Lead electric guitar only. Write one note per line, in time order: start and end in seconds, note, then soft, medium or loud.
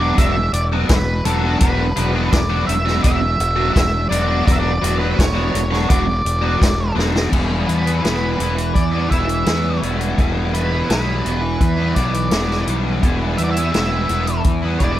0.00 0.18 D5 medium
0.18 0.53 E5 medium
0.54 0.63 D5 medium
0.89 1.25 B4 medium
1.25 1.60 A4 medium
1.60 2.34 B4 medium
2.33 2.66 D5 medium
2.67 3.02 E5 medium
3.03 3.72 E5 medium
3.73 4.08 E5 medium
4.09 4.45 D5 medium
4.46 4.52 D5 medium
4.52 4.60 E5 medium
4.60 4.99 D5 medium
4.99 5.19 B4 medium
5.19 5.90 C#5 medium
5.90 6.93 D5 medium
7.68 8.03 B4 medium
8.04 8.71 B4 medium
8.74 9.10 D5 medium
9.10 9.78 E5 medium
10.54 10.89 B4 medium
10.91 11.60 B4 medium
11.62 11.94 B4 medium
11.95 12.63 D5 medium
13.38 13.43 E5 medium
13.44 13.51 D5 medium
13.51 13.71 E5 medium
13.72 14.40 E5 medium
14.79 14.99 D5 medium